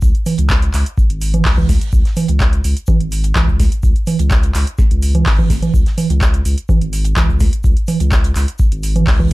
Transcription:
0.02 C#2, kick, shaker
0.15 closed hi-hat, shaker
0.26 open hi-hat, low conga, shaker
0.38 C#2, closed hi-hat, shaker
0.50 kick, snare, clap, shaker
0.62 closed hi-hat, shaker
0.73 C#2, clap, open hi-hat, shaker
0.86 closed hi-hat, shaker
0.98 kick, shaker
1.10 G#1, closed hi-hat, shaker
1.21 open hi-hat, shaker
1.34 closed hi-hat, low conga, shaker
1.45 C#2, kick, snare, clap, open hi-hat, shaker
1.58 kick, low conga, shaker
1.69 kick, snare, open hi-hat, shaker
1.81 closed hi-hat, shaker
1.93 C#2, kick, shaker
2.05 snare, closed hi-hat, shaker
2.17 open hi-hat, low conga, shaker
2.28 C#2, closed hi-hat, shaker
2.40 kick, snare, clap, shaker
2.53 closed hi-hat, shaker
2.64 C#2, open hi-hat, shaker
2.77 closed hi-hat, shaker
2.87 kick, low conga, shaker
3.00 G#1, closed hi-hat, shaker
3.11 open hi-hat, shaker
3.24 closed hi-hat, shaker
3.35 C#2, kick, snare, clap, low conga, shaker
3.48 kick, shaker
3.60 kick, snare, open hi-hat, shaker
3.72 closed hi-hat, shaker
3.83 C#2, kick, shaker
3.96 closed hi-hat, shaker
4.07 open hi-hat, low conga, shaker
4.19 C#2, closed hi-hat, shaker
4.31 kick, snare, clap, shaker
4.43 closed hi-hat, shaker
4.54 C#2, clap, open hi-hat, shaker
4.67 closed hi-hat, shaker
4.79 kick, snare, shaker
4.91 C#2, closed hi-hat, shaker
5.02 open hi-hat, shaker
5.15 closed hi-hat, low conga, shaker
5.26 G#1, kick, snare, clap, open hi-hat, shaker
5.39 kick, low conga, shaker
5.50 kick, snare, open hi-hat, shaker
5.62 closed hi-hat, low conga, shaker
5.74 C#2, kick, shaker
5.86 snare, closed hi-hat, shaker
5.98 open hi-hat, low conga, shaker
6.10 C#2, closed hi-hat, shaker
6.21 kick, snare, clap, shaker
6.34 closed hi-hat, shaker
6.45 C#2, open hi-hat, shaker
6.58 closed hi-hat, shaker
6.69 kick, low conga, shaker
6.81 G#1, closed hi-hat, shaker
6.93 open hi-hat, shaker
7.05 closed hi-hat, shaker
7.17 C#2, kick, snare, clap, low conga, shaker
7.29 kick, shaker
7.40 kick, snare, open hi-hat, shaker
7.53 closed hi-hat, shaker
7.64 C#2, kick, shaker
7.77 closed hi-hat, shaker
7.87 open hi-hat, low conga, shaker
8.00 C#2, closed hi-hat, shaker
8.12 kick, snare, clap, shaker
8.24 closed hi-hat, shaker
8.36 C#2, clap, open hi-hat, shaker
8.48 closed hi-hat, shaker
8.59 kick, shaker
8.72 G#1, closed hi-hat, shaker
8.83 open hi-hat, shaker
8.96 closed hi-hat, low conga, shaker
9.07 C#2, kick, snare, clap, open hi-hat, shaker
9.20 kick, low conga, shaker

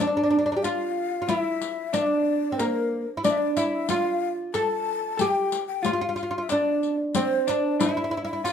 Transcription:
0.00 D4 D5
0.07 D4
0.17 D4
0.24 D4
0.31 D4
0.39 D4
0.46 D4
0.52 D4
0.57 G4
0.63 F4 F5, riq
1.22 F4
1.28 E4 F4 E5, riq
1.39 E4
1.61 riq
1.93 D4 D5, riq
2.01 E5
2.07 D5
2.52 C4
2.58 A#3 A#4, riq
3.17 E4
3.24 D4 D5, riq
3.31 E5
3.38 D5
3.56 E4 E5, riq
3.89 F4 F5, riq
4.54 A4 A5, riq
5.17 G4 G5, riq
5.52 riq
5.68 G5
5.83 F4 F5, riq
5.93 F4
6.01 F4
6.09 F4
6.16 F4, riq
6.23 F4
6.31 F4
6.38 F4
6.42 E5
6.49 D4 D5, riq
6.83 riq
7.15 C4 C5, riq
7.47 D4 D5, riq
7.80 E4 E5, riq
7.89 E4
7.97 E4
8.04 E4
8.11 E4
8.17 E4
8.25 E4 F5
8.29 E5
8.33 E4
8.44 F4 F5, riq

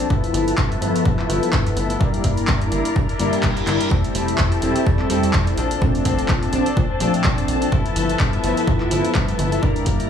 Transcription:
Already playing: A5
0.00 C4 D4
0.10 G2 F3 A3 B3 E4 A4 B4 E5, kick
0.24 closed hi-hat
0.33 G1 F3 B3 E4 A4, open hi-hat
0.48 closed hi-hat
0.57 G2 F3 B3 E4 A4, kick, clap
0.72 closed hi-hat
0.81 G1 F3 A3 B3 E4 A4, open hi-hat
0.94 B3 E4 A4, closed hi-hat
1.05 G2, kick
1.18 B3 E4 A4, clap
1.28 G1 F3 A3 B3 E4 A4, open hi-hat
1.43 G2, closed hi-hat
1.52 G2 F3 B3 E4 A4, kick, clap
1.66 B3 E4 A4, closed hi-hat
1.77 G1, open hi-hat
1.89 B3 E4 A4, closed hi-hat
2.00 G2 G3 A#3 D4 E4 A#4 D5 A#5, kick
2.14 closed hi-hat
2.23 G1 G3 D4 E4 A#4, kick, open hi-hat
2.37 closed hi-hat
2.47 G2 G3 D4 E4 A#4, kick, clap
2.61 closed hi-hat
2.71 G1 G3 A#3 D4 E4 A#4, open hi-hat
2.85 D4 E4 A#4, closed hi-hat
2.96 G2, kick, reverse cymbal
3.09 D4 E4 A#4, closed hi-hat
3.19 G1 G3 A#3 D4 E4 A#4, open hi-hat
3.33 G2, closed hi-hat
3.43 G2 G3 D4 E4 A#4, kick, clap
3.56 D4 E4 A#4, closed hi-hat
3.67 G1, clap, open hi-hat
3.80 D4 E4 A#4, closed hi-hat
3.90 F2 G3 A3 C4 E4 G4 A4 E5 A5, kick
4.04 closed hi-hat
4.14 F1 G3 C4 E4 A4, open hi-hat
4.28 closed hi-hat
4.38 F2 G3 C4 E4 A4, kick, clap
4.52 closed hi-hat
4.62 F1 G3 A3 C4 E4 A4, open hi-hat
4.75 C4 E4 A4, closed hi-hat
4.87 F2, kick
4.99 C4 E4 A4, clap
5.10 F1 G3 A3 C4 E4 A4, open hi-hat
5.23 F2, closed hi-hat
5.33 F2 C4 E4 A4, kick, clap
5.47 C4 E4 A4, closed hi-hat
5.57 A#1 F3 C4 D4 A4 C5 A5, open hi-hat
5.71 closed hi-hat
5.81 A#2 F3 A3 C4 D4, kick
5.95 closed hi-hat
6.05 A#1 F3 C4 D4 A4, kick, open hi-hat
6.19 closed hi-hat
6.29 A#2 F3 C4 D4 A4, kick, clap
6.43 closed hi-hat
6.53 A#1 F3 A3 C4 D4 A4, open hi-hat
6.66 C4 D4 A4, closed hi-hat
6.77 A#2, kick
6.90 A#1 C4 D4 A4
7.00 A#1 F3 A3 C4 D4 A4, open hi-hat
7.14 A#2, closed hi-hat
7.24 A#2 F3 C4 D4 A4, kick, clap
7.37 C4 D4 A4, closed hi-hat
7.48 A#1, open hi-hat
7.61 C4 D4 A4, closed hi-hat
7.71 G2 F3 A3 B3 E4 A4 B4 E5, kick
7.86 closed hi-hat
7.96 G1 F3 B3 E4 A4, open hi-hat
8.09 closed hi-hat
8.20 G2 F3 E4 A4, kick, clap
8.33 closed hi-hat
8.43 G1 F3 A3 B3 E4 A4, open hi-hat
8.56 B3 E4 A4, closed hi-hat
8.67 G2, kick
8.80 B3 E4 A4, clap
8.90 G1 F3 A3 B3 E4 A4, open hi-hat
9.05 closed hi-hat
9.14 G2 F3 B3 E4 A4, kick, clap
9.28 B3 E4 A4, closed hi-hat
9.39 G1, open hi-hat
9.51 B3 E4 A4, closed hi-hat
9.62 G2 G3 A#3 D4 E4 A#4 D5 A#5, kick
9.76 closed hi-hat
9.85 G1 G3 D4 E4 A#4, kick, open hi-hat
10.00 closed hi-hat

